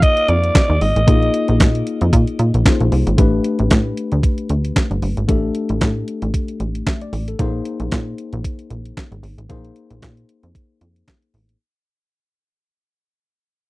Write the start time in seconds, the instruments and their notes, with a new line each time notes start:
Already playing: tine electric piano A#3 D#4 F4 G#4 C5
0.02 alto saxophone D#5, kick, closed hi-hat
0.17 closed hi-hat
0.28 analog synth bass F2, alto saxophone D5, closed hi-hat
0.44 closed hi-hat
0.55 kick, snare, clap, closed hi-hat
0.70 analog synth bass D#2
0.81 analog synth bass G#1, alto saxophone D#5, open hi-hat
0.96 analog synth bass A1, closed hi-hat
1.07 analog synth bass A#1, tine electric piano A#3 D#4 F4 G#4 D#5, kick, closed hi-hat
1.23 closed hi-hat
1.34 closed hi-hat
1.48 analog synth bass A#1, closed hi-hat
1.60 analog synth bass A#2, kick, snare, clap, closed hi-hat
1.75 closed hi-hat
1.87 closed hi-hat
2.01 analog synth bass F2, closed hi-hat
2.13 analog synth bass A#2, kick, closed hi-hat
2.27 closed hi-hat
2.39 analog synth bass A#2, closed hi-hat
2.54 analog synth bass A#1, closed hi-hat
2.65 tine electric piano A#3 D#4 F4 G#4 C5, kick, snare, clap, closed hi-hat
2.80 analog synth bass A#1, closed hi-hat
2.92 analog synth bass C2, open hi-hat
3.07 analog synth bass G#1, closed hi-hat
3.18 analog synth bass A1, tine electric piano A3 D4 G4 B4, kick, closed hi-hat
3.44 closed hi-hat
3.59 analog synth bass A1, closed hi-hat
3.71 analog synth bass A2, kick, snare, clap, closed hi-hat
3.97 closed hi-hat
4.12 analog synth bass D2, closed hi-hat
4.23 kick, closed hi-hat
4.38 closed hi-hat
4.49 analog synth bass D2, closed hi-hat
4.65 closed hi-hat
4.76 kick, snare, clap, closed hi-hat
4.91 analog synth bass G1, closed hi-hat
5.02 analog synth bass G1, open hi-hat
5.17 analog synth bass G#1, closed hi-hat
5.28 analog synth bass A1, tine electric piano A3 D4 G4 A4, kick, closed hi-hat
5.55 closed hi-hat
5.69 analog synth bass A1, closed hi-hat
5.81 analog synth bass A2, kick, snare, clap, closed hi-hat
6.08 closed hi-hat
6.22 analog synth bass A1, closed hi-hat
6.34 kick, closed hi-hat
6.48 closed hi-hat
6.60 analog synth bass A1, closed hi-hat
6.75 closed hi-hat
6.87 tine electric piano E5, kick, snare, clap, closed hi-hat
7.01 tine electric piano D5, closed hi-hat
7.13 analog synth bass A1, open hi-hat
7.28 tine electric piano A4, closed hi-hat
7.39 analog synth bass A#1, tine electric piano A#3 D#4 G#4 C5, kick, closed hi-hat
7.65 closed hi-hat
7.80 analog synth bass A#1, closed hi-hat
7.92 analog synth bass A#2, kick, snare, clap, closed hi-hat
8.18 closed hi-hat
8.33 analog synth bass A#1, closed hi-hat
8.44 kick, closed hi-hat
8.59 closed hi-hat
8.70 analog synth bass A#1, closed hi-hat
8.86 closed hi-hat
8.97 kick, snare, clap, closed hi-hat
9.12 analog synth bass G#1, closed hi-hat
9.23 analog synth bass G#1, open hi-hat
9.38 analog synth bass A1, closed hi-hat
9.49 analog synth bass A#1, tine electric piano A#3 D#4 G#4 C5, kick, closed hi-hat
9.65 closed hi-hat
9.76 closed hi-hat
9.90 analog synth bass A#1, closed hi-hat
10.02 analog synth bass A#2, kick, snare, clap, closed hi-hat
10.17 closed hi-hat
10.29 closed hi-hat
10.43 analog synth bass F2, closed hi-hat
10.55 kick, closed hi-hat
10.81 analog synth bass F2, closed hi-hat
10.96 closed hi-hat
11.08 kick, snare, clap, closed hi-hat
11.22 closed hi-hat
11.34 analog synth bass A1, open hi-hat
11.49 closed hi-hat